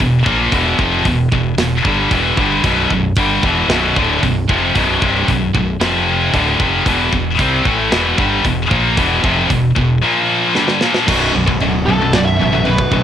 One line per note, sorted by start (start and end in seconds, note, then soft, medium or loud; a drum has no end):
0.00 0.25 E1 medium
0.00 0.21 E2 medium
0.00 0.22 B2 medium
0.00 kick medium
0.00 open hi-hat soft
0.26 0.51 A#1 medium
0.26 0.52 A#2 medium
0.26 0.52 F3 medium
0.26 0.52 A#3 loud
0.26 kick loud
0.52 0.77 E1 medium
0.52 0.78 E2 medium
0.52 0.78 B2 medium
0.52 0.79 E3 medium
0.52 kick loud
0.52 open hi-hat medium
0.79 1.04 F1 medium
0.79 1.04 F2 medium
0.79 1.05 C3 loud
0.79 1.05 F3 loud
0.79 kick medium
1.05 1.30 E1 medium
1.05 1.28 E2 medium
1.05 1.28 B2 medium
1.05 kick medium
1.05 open hi-hat medium
1.32 1.56 E1 medium
1.32 1.54 E2 medium
1.32 1.54 B2 medium
1.32 kick medium
1.57 1.82 E1 medium
1.57 1.81 E2 medium
1.57 1.81 B2 medium
1.57 snare loud
1.57 open hi-hat medium
1.85 2.09 G1 medium
1.85 2.11 G2 medium
1.85 2.11 D3 medium
1.85 2.12 G3 medium
1.85 kick loud
2.11 2.36 E1 medium
2.11 2.37 E2 medium
2.11 2.37 B2 loud
2.11 2.38 E3 loud
2.11 kick medium
2.11 open hi-hat soft
2.37 2.62 G1 medium
2.37 2.64 G2 medium
2.37 2.64 D3 medium
2.37 2.65 G3 medium
2.37 kick medium
2.64 2.88 B0 medium
2.64 2.90 B1 medium
2.64 2.90 F#2 medium
2.64 2.91 B2 loud
2.64 kick loud
2.64 open hi-hat medium
2.90 3.15 B0 medium
2.90 3.12 B1 medium
2.90 3.12 F#2 medium
2.90 kick medium
3.16 3.41 G1 medium
3.16 3.43 G2 medium
3.16 3.43 D3 medium
3.16 3.43 G3 medium
3.16 kick loud
3.16 open hi-hat medium
3.43 3.67 E1 medium
3.43 3.70 E2 medium
3.43 3.70 B2 medium
3.43 3.70 E3 medium
3.43 kick loud
3.68 3.93 B0 medium
3.68 3.96 B1 medium
3.68 3.96 F#2 medium
3.68 3.96 B2 medium
3.68 snare loud
3.68 open hi-hat soft
3.96 4.21 D1 medium
3.96 4.22 D2 medium
3.96 4.22 A2 medium
3.96 4.23 D3 loud
3.96 kick medium
4.23 4.47 B0 medium
4.23 4.44 B1 medium
4.23 4.44 F#2 medium
4.23 kick medium
4.23 open hi-hat soft
4.49 4.74 F1 medium
4.49 4.75 F2 medium
4.49 4.75 C3 medium
4.49 4.75 F3 loud
4.49 kick loud
4.75 5.00 B0 medium
4.75 5.01 B1 medium
4.75 5.01 F#2 medium
4.75 5.01 B2 medium
4.75 kick loud
4.75 open hi-hat medium
5.02 5.26 C1 medium
5.02 5.28 C2 medium
5.02 5.28 G2 medium
5.02 5.28 C3 medium
5.02 kick loud
5.28 5.52 B0 medium
5.28 5.50 B1 medium
5.28 5.50 F#2 medium
5.28 kick medium
5.28 open hi-hat medium
5.54 5.79 B0 medium
5.54 5.76 B1 medium
5.54 5.76 F#2 medium
5.54 kick medium
5.80 6.29 F1 medium
5.80 6.32 F2 medium
5.80 6.33 C3 loud
5.80 6.33 F3 medium
5.80 snare loud
5.80 open hi-hat medium
6.33 6.58 D1 medium
6.33 6.59 D2 loud
6.33 6.59 A2 loud
6.33 6.59 D3 loud
6.33 kick medium
6.33 open hi-hat medium
6.59 6.84 F1 medium
6.59 6.85 F2 medium
6.59 6.85 C3 loud
6.59 6.86 F3 loud
6.59 kick loud
6.86 7.10 E1 medium
6.86 7.12 E2 medium
6.86 7.12 B2 loud
6.86 7.12 E3 loud
6.86 kick loud
6.86 open hi-hat medium
7.13 7.37 E1 medium
7.13 7.34 E2 medium
7.13 7.34 B2 medium
7.13 kick medium
7.39 7.63 C2 medium
7.39 7.65 C3 medium
7.39 7.65 G3 medium
7.39 7.66 C4 medium
7.39 kick loud
7.39 open hi-hat medium
7.65 7.90 A1 medium
7.65 7.90 A2 medium
7.65 7.91 E3 medium
7.65 7.91 A3 loud
7.65 kick loud
7.91 8.16 E1 medium
7.91 8.17 E2 medium
7.91 8.17 B2 medium
7.91 8.17 E3 medium
7.91 snare loud
7.91 open hi-hat medium
8.18 8.42 G1 medium
8.18 8.44 G2 medium
8.18 8.44 D3 loud
8.18 8.44 G3 loud
8.18 kick loud
8.44 8.69 E1 medium
8.44 8.65 E2 medium
8.44 8.65 B2 medium
8.44 kick medium
8.44 open hi-hat soft
8.70 8.95 A#1 medium
8.70 8.96 A#2 medium
8.70 8.96 F3 medium
8.70 8.96 A#3 loud
8.70 kick loud
8.97 9.22 E1 medium
8.97 9.22 E2 medium
8.97 9.23 B2 loud
8.97 9.22 E3 loud
8.97 kick loud
8.97 open hi-hat medium
9.23 9.48 F1 medium
9.23 9.47 F2 medium
9.23 9.48 C3 medium
9.23 9.48 F3 loud
9.23 kick loud
9.48 9.74 E1 medium
9.48 9.70 E2 medium
9.48 9.70 B2 medium
9.48 kick medium
9.48 open hi-hat soft
9.75 10.00 E1 medium
9.75 9.97 E2 medium
9.75 9.97 B2 medium
9.75 kick medium
10.02 10.54 A#2 medium
10.02 10.54 F3 loud
10.02 10.54 A#3 loud
10.54 10.80 G2 medium
10.54 10.80 D3 loud
10.54 10.81 G3 medium
10.54 snare medium
10.68 snare medium
10.81 11.07 A#2 medium
10.81 11.07 F3 medium
10.81 11.08 A#3 loud
10.81 snare medium
10.94 snare medium
11.07 11.33 B0 medium
11.07 11.32 B1 medium
11.07 11.32 F#2 medium
11.07 11.33 B2 medium
11.07 kick loud
11.07 crash loud
11.07 crash medium
11.34 11.60 B0 medium
11.34 11.46 B1 medium
11.34 11.45 F#2 medium
11.34 11.60 B2 medium
11.46 11.60 B1 medium
11.46 11.60 F#2 medium
11.46 kick medium
11.60 11.86 D1 medium
11.60 11.84 B1 medium
11.60 11.85 F#2 medium
11.60 11.87 B2 loud
11.60 crash medium
11.86 12.12 B1 medium
11.86 12.01 B1 medium
11.86 12.01 F#2 medium
11.86 12.12 B2 medium
11.86 12.12 A4 loud
12.02 12.14 B1 medium
12.02 12.14 F#2 medium
12.12 12.38 B0 medium
12.12 12.37 B1 medium
12.12 12.39 B2 medium
12.12 12.25 D5 loud
12.12 snare loud
12.12 crash medium
12.16 12.38 B1 medium
12.16 12.38 F#2 medium
12.25 12.64 E5 medium
12.40 12.65 A1 loud
12.40 12.51 B1 medium
12.40 12.52 F#2 loud
12.40 12.65 B2 loud
12.53 12.65 B1 medium
12.53 12.65 F#2 medium
12.65 12.91 B0 medium
12.65 12.89 B1 medium
12.65 12.89 F#2 medium
12.65 12.90 B2 medium
12.65 13.03 B4 medium
12.65 crash medium
12.78 kick medium
12.91 13.03 B0 medium
12.91 13.03 B1 medium
12.91 13.03 F#2 medium
12.91 13.03 B2 medium
12.91 kick medium